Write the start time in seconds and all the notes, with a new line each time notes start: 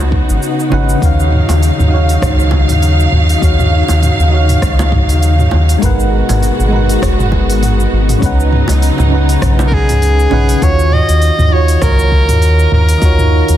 Already playing: C#2 C#3 B3 C#4 D#4 F#4 B4 F#5
0.12 kick
0.29 G#1, shaker
0.43 shaker
0.60 shaker
0.70 G#1 C#3 C#4 D#4 B4 F#5, high bongo
0.89 shaker
0.98 D#3 D#4 F#4, kick
1.02 D#2 F#3 C#5 F5, open hi-hat, shaker
1.20 shaker
1.32 mid tom
1.49 D#2, open hi-hat, high bongo, shaker
1.63 open hi-hat, shaker
1.79 D#2, mid tom, shaker
1.88 D#3 D#4 F#4
1.94 C#5 F5
2.09 open hi-hat, shaker
2.22 C#2, kick, cross-stick, mid tom, open hi-hat, shaker
2.40 shaker
2.51 kick, high bongo
2.69 D#2, mid tom, open hi-hat, shaker
2.82 open hi-hat, shaker
3.00 shaker
3.12 D#2, mid tom
3.29 open hi-hat, shaker
3.38 D#2 D#3 D#4 F#4, kick
3.42 C#5 F5, open hi-hat, shaker
3.59 mid tom, shaker
3.88 D#2, open hi-hat, high bongo, shaker
4.03 mid tom, open hi-hat, shaker
4.19 D#2, shaker
4.28 D#3 D#4 F#4
4.34 C#5 F5
4.49 mid tom, open hi-hat, shaker
4.62 C#2, kick, cross-stick, open hi-hat, shaker
4.79 high bongo, shaker
4.92 kick, mid tom
5.09 D#2, open hi-hat, shaker
5.22 open hi-hat, shaker
5.39 mid tom, shaker
5.51 D#2, high bongo
5.69 open hi-hat, shaker
5.78 G#1 G#3 B3 D#4 A#4, kick, mid tom, open hi-hat
5.83 B2 G#3 F#4 B4 F#5, shaker
6.00 shaker
6.29 G#1, mid tom, open hi-hat, high bongo, shaker
6.43 open hi-hat, shaker
6.59 G#1, shaker
6.69 G#3 D#4 A#4, mid tom
6.74 B4 F#5
6.89 open hi-hat, shaker
7.02 F#1, kick, cross-stick, open hi-hat, shaker
7.19 mid tom, shaker
7.32 kick, high bongo
7.49 G#1, open hi-hat, shaker
7.63 mid tom, open hi-hat, shaker
7.80 shaker
7.93 G#1
8.09 mid tom, open hi-hat, shaker
8.18 C#2 C#3 C#4 D#4, kick
8.22 C#3 F#3 D#4 B4 F#5, open hi-hat, shaker
8.40 shaker
8.52 mid tom
8.68 C#2, open hi-hat, high bongo, shaker
8.82 open hi-hat, shaker
8.98 C#2, mid tom, high bongo, shaker
9.08 C#3 C#4 D#4
9.13 B4 F#5
9.29 open hi-hat, shaker
9.42 B1, kick, cross-stick, mid tom, open hi-hat, shaker
9.59 high bongo, shaker
9.67 A#4
9.72 G#4, kick
9.89 C#2, mid tom, open hi-hat, shaker
10.02 open hi-hat, shaker
10.20 shaker
10.30 B1 C#3 C#4 D#4 B4 F#5, mid tom, high bongo
10.49 open hi-hat, shaker
10.58 D#2 D#3 D#4 F4, kick
10.62 F#4 C#5, open hi-hat, shaker
10.79 shaker
10.92 D#5, mid tom
11.09 D#2, open hi-hat, shaker
11.22 open hi-hat, shaker
11.39 D#2, mid tom, shaker
11.48 D#3 D#4 F4
11.53 F#4 C#5
11.68 open hi-hat, shaker
11.82 C#2 A#4, kick, cross-stick, mid tom, open hi-hat, shaker
11.99 shaker
12.12 kick
12.29 D#2, mid tom, open hi-hat, shaker
12.42 open hi-hat, shaker
12.59 shaker
12.72 D#2 A#4, mid tom
12.89 open hi-hat, shaker
12.98 D#3 D#4 F4, open hi-hat
13.02 D#2 F#4 C#5, kick, shaker
13.19 mid tom, shaker
13.48 D#2, open hi-hat, shaker